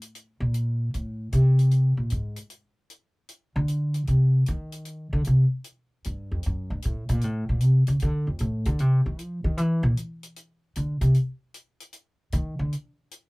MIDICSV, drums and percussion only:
0, 0, Header, 1, 2, 480
1, 0, Start_track
1, 0, Tempo, 392927
1, 181, Time_signature, 4, 2, 24, 8
1, 16238, End_track
2, 0, Start_track
2, 0, Title_t, "Drums"
2, 20, Note_on_c, 9, 42, 41
2, 142, Note_off_c, 9, 42, 0
2, 182, Note_on_c, 9, 42, 40
2, 304, Note_off_c, 9, 42, 0
2, 660, Note_on_c, 9, 42, 43
2, 782, Note_off_c, 9, 42, 0
2, 1148, Note_on_c, 9, 42, 35
2, 1270, Note_off_c, 9, 42, 0
2, 1618, Note_on_c, 9, 42, 43
2, 1740, Note_off_c, 9, 42, 0
2, 1939, Note_on_c, 9, 42, 40
2, 2061, Note_off_c, 9, 42, 0
2, 2092, Note_on_c, 9, 42, 39
2, 2214, Note_off_c, 9, 42, 0
2, 2565, Note_on_c, 9, 42, 47
2, 2688, Note_off_c, 9, 42, 0
2, 2885, Note_on_c, 9, 42, 44
2, 3007, Note_off_c, 9, 42, 0
2, 3052, Note_on_c, 9, 42, 38
2, 3174, Note_off_c, 9, 42, 0
2, 3540, Note_on_c, 9, 42, 40
2, 3662, Note_off_c, 9, 42, 0
2, 4015, Note_on_c, 9, 42, 43
2, 4137, Note_off_c, 9, 42, 0
2, 4496, Note_on_c, 9, 42, 44
2, 4619, Note_off_c, 9, 42, 0
2, 4813, Note_on_c, 9, 42, 41
2, 4936, Note_off_c, 9, 42, 0
2, 4975, Note_on_c, 9, 42, 35
2, 5098, Note_off_c, 9, 42, 0
2, 5450, Note_on_c, 9, 42, 43
2, 5572, Note_off_c, 9, 42, 0
2, 5768, Note_on_c, 9, 42, 43
2, 5890, Note_off_c, 9, 42, 0
2, 5926, Note_on_c, 9, 42, 42
2, 6049, Note_off_c, 9, 42, 0
2, 6407, Note_on_c, 9, 42, 49
2, 6529, Note_off_c, 9, 42, 0
2, 6893, Note_on_c, 9, 42, 39
2, 7015, Note_off_c, 9, 42, 0
2, 7384, Note_on_c, 9, 42, 44
2, 7506, Note_off_c, 9, 42, 0
2, 7853, Note_on_c, 9, 42, 38
2, 7975, Note_off_c, 9, 42, 0
2, 8336, Note_on_c, 9, 42, 48
2, 8458, Note_off_c, 9, 42, 0
2, 8658, Note_on_c, 9, 42, 43
2, 8781, Note_off_c, 9, 42, 0
2, 8812, Note_on_c, 9, 42, 36
2, 8934, Note_off_c, 9, 42, 0
2, 9291, Note_on_c, 9, 42, 47
2, 9413, Note_off_c, 9, 42, 0
2, 9611, Note_on_c, 9, 42, 43
2, 9733, Note_off_c, 9, 42, 0
2, 9769, Note_on_c, 9, 42, 39
2, 9891, Note_off_c, 9, 42, 0
2, 10246, Note_on_c, 9, 42, 44
2, 10368, Note_off_c, 9, 42, 0
2, 10571, Note_on_c, 9, 42, 42
2, 10693, Note_off_c, 9, 42, 0
2, 10737, Note_on_c, 9, 42, 43
2, 10859, Note_off_c, 9, 42, 0
2, 11224, Note_on_c, 9, 42, 47
2, 11346, Note_off_c, 9, 42, 0
2, 11699, Note_on_c, 9, 42, 44
2, 11821, Note_off_c, 9, 42, 0
2, 12182, Note_on_c, 9, 42, 50
2, 12304, Note_off_c, 9, 42, 0
2, 12497, Note_on_c, 9, 42, 42
2, 12619, Note_off_c, 9, 42, 0
2, 12659, Note_on_c, 9, 42, 42
2, 12781, Note_off_c, 9, 42, 0
2, 13139, Note_on_c, 9, 42, 49
2, 13261, Note_off_c, 9, 42, 0
2, 13452, Note_on_c, 9, 42, 44
2, 13574, Note_off_c, 9, 42, 0
2, 13614, Note_on_c, 9, 42, 42
2, 13736, Note_off_c, 9, 42, 0
2, 14098, Note_on_c, 9, 42, 46
2, 14220, Note_off_c, 9, 42, 0
2, 14418, Note_on_c, 9, 42, 44
2, 14540, Note_off_c, 9, 42, 0
2, 14570, Note_on_c, 9, 42, 40
2, 14692, Note_off_c, 9, 42, 0
2, 15054, Note_on_c, 9, 42, 47
2, 15176, Note_off_c, 9, 42, 0
2, 15546, Note_on_c, 9, 42, 43
2, 15668, Note_off_c, 9, 42, 0
2, 16019, Note_on_c, 9, 42, 49
2, 16142, Note_off_c, 9, 42, 0
2, 16238, End_track
0, 0, End_of_file